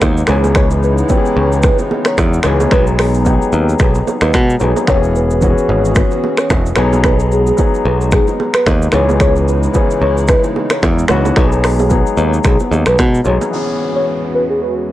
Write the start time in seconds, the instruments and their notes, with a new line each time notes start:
Already playing: grand piano F#3 B3 D#4 G4 G#4, analog synth pad G#3 B3 D#4
0.01 picked electric bass D#2, finger snap, kick, cross-stick, high bongo, shaker
0.17 shaker
0.27 picked electric bass C#2, analog synth pad C#3 E4, grand piano E3 B3 C#4 G#4, soft synth lead C#5, finger snap, cross-stick, high bongo, low conga, shaker
0.44 low bongo, shaker
0.55 soft synth lead C#5, finger snap, kick, cross-stick, low conga, shaker
0.71 shaker
0.83 soft synth lead B4, shaker
0.98 soft synth lead B4, shaker
1.08 grand piano E3 B3 C#4 G4, kick, high bongo, shaker
1.17 grand piano G#4
1.26 shaker
1.37 picked electric bass C#2, soft synth lead C#5
1.52 shaker
1.63 soft synth lead B4, finger snap, kick, cross-stick, low conga, shaker
1.79 high bongo, shaker
1.91 low bongo
2.05 soft synth lead C#5, finger snap, cross-stick, shaker
2.18 picked electric bass E2, finger snap, kick, cross-stick, high bongo, shaker
2.33 shaker
2.43 picked electric bass C#2, grand piano E3 B3 C#4 G#4, finger snap, cross-stick, high bongo, low conga, shaker
2.60 low bongo, shaker
2.71 picked electric bass B1, grand piano F#3 B3 D#4 G#4, soft synth lead B4, finger snap, kick, cross-stick, low conga, shaker
2.87 shaker
2.99 soft synth lead G#4, finger snap, cross-stick, open hi-hat, shaker
3.14 soft synth lead G#4, shaker
3.25 grand piano F#3 B3 D#4 G4, kick, high bongo, shaker
3.34 grand piano G#4
3.42 shaker
3.52 picked electric bass D#2, soft synth lead B4, shaker
3.69 shaker
3.79 picked electric bass B1, soft synth lead G#4, finger snap, kick, cross-stick, low conga, shaker
3.95 high bongo, shaker
4.07 low bongo, shaker
4.21 picked electric bass D#2, soft synth lead B4, finger snap, cross-stick, shaker
4.34 picked electric bass B2, finger snap, kick, cross-stick, high bongo, shaker
4.50 shaker
4.60 picked electric bass B1, grand piano F#3 B3 D#4 G#4, soft synth lead C#5, high bongo, low conga, shaker
4.76 low bongo, shaker
4.87 picked electric bass E1, grand piano E3 B3 C#4 G4, analog synth pad E3 C#4 F#4 G#4, soft synth lead C#5, finger snap, kick, cross-stick, low conga, shaker
4.96 grand piano G#4
5.03 shaker
5.16 soft synth lead B4, shaker
5.31 soft synth lead B4, shaker
5.41 grand piano E3 B3 C#4 F#4, kick, high bongo, shaker
5.50 grand piano G#4
5.58 shaker
5.69 picked electric bass G#1, soft synth lead C#5
5.85 shaker
5.95 soft synth lead B4, finger snap, kick, cross-stick, low conga, shaker
6.11 high bongo, shaker
6.24 low bongo
6.37 soft synth lead C#5, finger snap, cross-stick, shaker
6.50 picked electric bass E1, finger snap, kick, cross-stick, high bongo, shaker
6.66 shaker
6.76 picked electric bass B1, grand piano F#3 B3 D#4 G#4, analog synth pad G#3 D#4, finger snap, cross-stick, high bongo, low conga, shaker
6.93 low bongo, shaker
7.04 soft synth lead B4, finger snap, kick, cross-stick, low conga, shaker
7.20 shaker
7.32 soft synth lead G#4, shaker
7.47 soft synth lead G#4, shaker
7.57 grand piano F#3 B3 D#4 G#4, kick, high bongo, shaker
7.74 shaker
7.85 picked electric bass B1, soft synth lead B4
8.01 shaker
8.12 soft synth lead G#4, finger snap, kick, cross-stick, low conga, shaker
8.27 high bongo, shaker
8.40 low bongo
8.54 soft synth lead B4, finger snap, cross-stick, shaker
8.66 picked electric bass D#2, finger snap, kick, cross-stick, high bongo, shaker
8.82 shaker
8.92 picked electric bass C#2, analog synth pad C#3 E4, grand piano E3 B3 C#4 G#4, soft synth lead C#5, finger snap, cross-stick, high bongo, low conga, shaker
9.09 low bongo, shaker
9.20 soft synth lead C#5, finger snap, kick, cross-stick, low conga, shaker
9.36 shaker
9.48 soft synth lead B4, shaker
9.63 soft synth lead B4, shaker
9.73 grand piano E3 B3 C#4 G#4, kick, high bongo, shaker
9.91 shaker
10.02 picked electric bass C#2, soft synth lead C#5
10.18 shaker
10.28 soft synth lead B4, finger snap, kick, cross-stick, low conga, shaker
10.44 high bongo, shaker
10.56 low bongo
10.70 soft synth lead C#5, finger snap, cross-stick, shaker
10.83 picked electric bass E2, finger snap, kick, cross-stick, high bongo, shaker
10.99 shaker
11.08 picked electric bass C#2, grand piano E3 B3 C#4 F#4, finger snap, cross-stick, high bongo, low conga, shaker
11.25 low bongo, shaker
11.35 picked electric bass B1, grand piano F#3 B3 D#4 F#4, analog synth pad B3, soft synth lead B4, finger snap, kick, cross-stick, low conga, shaker
11.44 grand piano G#4
11.52 shaker
11.64 soft synth lead G#4, finger snap, cross-stick, open hi-hat, shaker
11.79 soft synth lead G#4, low bongo, shaker
11.89 grand piano F#3 B3 D#4 G#4, kick, high bongo, shaker
12.07 shaker
12.17 picked electric bass D#2, soft synth lead B4, shaker
12.34 shaker
12.44 picked electric bass B1, soft synth lead G#4, finger snap, kick, cross-stick, low conga, shaker
12.60 high bongo, shaker
12.71 picked electric bass D#2, low bongo, shaker
12.86 picked electric bass B1, soft synth lead B4, finger snap, cross-stick, shaker
12.99 picked electric bass B2, finger snap, kick, cross-stick, high bongo, shaker
13.15 shaker
13.25 picked electric bass B1, grand piano F#3 B3 D#4 G#4, soft synth lead C#5, high bongo, low bongo, low conga, shaker
13.41 low bongo, shaker
13.51 analog synth pad E2 E3 G#3 C#4 F#4, grand piano E3 B3 C#4, downlifter
13.56 grand piano G#4
13.96 soft synth lead C#5
14.35 soft synth lead B4
14.50 soft synth lead G#4
14.62 soft synth lead B4